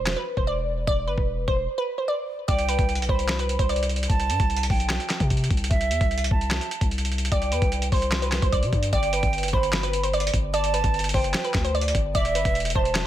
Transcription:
Already playing: E1 C5
0.06 snare, clap
0.16 B4
0.37 E1 C5, kick
0.47 D5
0.87 E1 D5, kick
1.08 G1 B4
1.18 E1, kick
1.48 E1 C5, kick
1.78 B4
1.98 C5
2.08 D5
2.48 C2 D5 G5, kick, closed hi-hat
2.59 closed hi-hat
2.69 B4, closed hi-hat
2.79 C2, kick, closed hi-hat
2.89 closed hi-hat
2.95 B1, closed hi-hat
3.02 closed hi-hat
3.09 C2 C5 B5, kick
3.19 closed hi-hat
3.28 snare, clap, closed hi-hat
3.39 B4, closed hi-hat
3.49 closed hi-hat
3.59 C2 C5, kick, closed hi-hat
3.69 D5, closed hi-hat
3.76 closed hi-hat
3.83 closed hi-hat
3.89 closed hi-hat
3.96 closed hi-hat
4.03 closed hi-hat
4.09 C2 A5, kick, closed hi-hat
4.20 closed hi-hat
4.30 G2, closed hi-hat
4.40 C2, kick, closed hi-hat
4.50 closed hi-hat
4.57 closed hi-hat
4.63 closed hi-hat
4.70 B1 G5, kick, open hi-hat
4.80 closed hi-hat
4.89 snare, clap, closed hi-hat
5.00 closed hi-hat
5.09 snare, clap, closed hi-hat
5.20 C3, kick, closed hi-hat
5.30 kick, closed hi-hat
5.37 closed hi-hat
5.44 closed hi-hat
5.50 C2, kick, closed hi-hat
5.57 closed hi-hat
5.64 closed hi-hat
5.70 C2 E5, kick, closed hi-hat
5.81 closed hi-hat
5.91 E2, closed hi-hat
6.01 C2, kick, closed hi-hat
6.11 closed hi-hat
6.18 closed hi-hat
6.24 closed hi-hat
6.31 C2 A5, kick
6.41 closed hi-hat
6.51 snare, clap, closed hi-hat
6.61 closed hi-hat
6.71 closed hi-hat
6.81 C2, kick, closed hi-hat
6.91 closed hi-hat
6.98 closed hi-hat
7.05 closed hi-hat
7.12 closed hi-hat
7.18 closed hi-hat
7.25 closed hi-hat
7.32 C2 D5 G5, kick, closed hi-hat
7.42 closed hi-hat
7.52 E2 B4, closed hi-hat
7.62 C2, kick, closed hi-hat
7.72 closed hi-hat
7.82 closed hi-hat
7.92 C2 C5 C6, kick, open hi-hat
8.02 closed hi-hat
8.12 snare, clap, closed hi-hat
8.22 B4, closed hi-hat
8.32 snare, clap, closed hi-hat
8.42 C2 C5, kick, closed hi-hat
8.52 D5, kick, closed hi-hat
8.63 C3, closed hi-hat
8.73 G2, kick, closed hi-hat
8.83 closed hi-hat
8.93 G1 D5 G5, kick, closed hi-hat
9.03 closed hi-hat
9.13 B4, closed hi-hat
9.23 G1, kick, closed hi-hat
9.33 closed hi-hat
9.38 closed hi-hat
9.43 F#1, closed hi-hat
9.48 closed hi-hat
9.53 G1 C5 B5, kick
9.63 closed hi-hat
9.73 snare, clap, closed hi-hat
9.83 B4, closed hi-hat
9.93 closed hi-hat
10.03 C5, closed hi-hat
10.13 D5, closed hi-hat
10.20 closed hi-hat
10.27 closed hi-hat
10.34 G1, kick, closed hi-hat
10.53 D5 A5, closed hi-hat
10.64 closed hi-hat
10.74 B4, closed hi-hat
10.84 G1, kick, closed hi-hat
10.94 closed hi-hat
10.99 closed hi-hat
11.04 closed hi-hat
11.09 closed hi-hat
11.14 F#1 C5 G5, kick, open hi-hat
11.24 closed hi-hat
11.34 snare, clap, closed hi-hat
11.44 B4, closed hi-hat
11.54 D2, kick, snare, clap, closed hi-hat
11.65 C5, closed hi-hat
11.75 D5, closed hi-hat
11.81 closed hi-hat
11.88 closed hi-hat
11.95 G1, kick, closed hi-hat
12.15 E1 D5 E5, kick, closed hi-hat
12.25 closed hi-hat
12.35 G1 B4, closed hi-hat
12.45 E1, kick, closed hi-hat
12.55 closed hi-hat
12.60 closed hi-hat
12.65 closed hi-hat
12.70 closed hi-hat
12.75 E1 C5 A5, kick
12.85 closed hi-hat
12.95 snare, clap, closed hi-hat

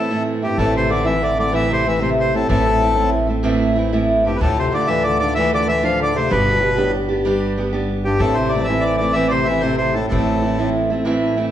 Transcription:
Already playing: A2 C4 A4
0.10 A2 E3 A3 C4 E4
0.42 G2 A3 C4 E4 G4
0.58 A1 A2 E3 A3 C4 E4 A4
0.76 C3 C5
0.90 D3 E3 A3 C4 E4 D5
1.04 A2 E3 A3 C4 E4 E5
1.23 D3 D5
1.37 D3 A3 C4 E4 D5
1.52 A2 E3 A3 C4 E4 E5
1.71 C3 C5
1.84 E3 A3 C4 E4
1.88 E5
1.99 A2 C3 E3 A3 C4 E4 C5
2.20 C5
2.33 A2 A3 C4 E4 A4
2.49 A1 A2 E3 A3 C4 E4 A4
2.67 B2
2.72 A2
2.80 E3 A3 C4 E4
2.88 G2 A2
2.95 A2 E3 A3 C4 E4
3.27 A3 C4 E4
3.43 A2 E3 A3 C4 E4
3.76 E3 A3 C4 E4
3.93 A2 E3 A3 C4 E4
4.24 G2 A3 C4 E4 G4
4.36 D2 B4
4.40 D2 A2 D3 A3 D4 F4 A4
4.58 C3 C5
4.72 D3 A3 D4 F4 D5
4.86 D2 A2 D3 E3 A3 D4 F4 E5
5.03 D3 D5
5.19 D3 A3 D4 F4 D5
5.23 D3
5.35 D2 A2 D3 E3 A3 D4 F4 E5
5.54 D3 D5
5.67 D3 E3 A3 D4 F4 E5
5.83 D2 A2 D3 F3 A3 D4 F4 F5
6.01 D3 D5
6.14 C3 D3 A3 D4 F4 C5
6.30 G1 B2 G3 B3 D4 G4 B4
6.44 C3
6.50 B2
6.60 A2 G3 B3 D4 G4
6.65 B2
6.76 A2 G3 B3 D4 G4
7.08 B3 D4 G4
7.25 G3 B3 D4 G4
7.58 G3 B3 D4 G4
7.73 G3 B3 D4 G4
8.05 G2 B3 D4 G4
8.19 A1 A2 E3 A3 C4 E4 A4
8.34 C3 C5
8.49 E3 D5
8.53 A3 C4 E4
8.61 F3 E5
8.67 A2 E3 A3 C4 E4
8.81 D5
8.97 E4 D5
9.01 A3 C4
9.13 A2 E3 C4 E5
9.17 A3 E4
9.28 C3 C5 D5
9.45 E3 E5
9.49 A3 C4 E4
9.60 A2 C3 E3 A3 C4 E4 C5
9.77 C3 C5
9.94 A2 A3 C4 E4 A4
10.08 A1 A2 E3 C4 A4
10.12 A3 E4
10.42 E3 A3 C4 E4
10.58 A2 E3 A3 C4 E4
10.90 A3 C4 E4
11.05 A2 E3 A3 C4 E4
11.36 E3 A3 C4 E4

